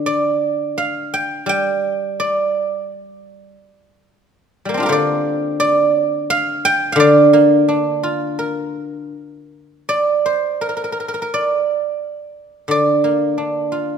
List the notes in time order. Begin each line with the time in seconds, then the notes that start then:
Already playing: D3
0.06 D5
0.78 F5
1.14 G5
1.46 G3 G5
2.20 D5
4.65 G3 A#3
4.74 C4 D4
4.80 F4 G4
4.86 D3 A#4 C5
4.92 D5
5.60 D5
6.02 C5
6.30 F5
6.65 G5
6.92 D3 F5
7.00 D5
7.33 A#3
7.68 D4
8.03 F4
8.39 A#4
9.89 D5
10.26 C5
10.61 A#4
10.69 A#4
10.77 A#4
10.84 A#4
10.92 A#4
11.00 A#4
11.08 A#4
11.14 A#4
11.22 A#4
11.34 D5
12.68 D3 D5
13.04 A#3
13.38 D4
13.72 F4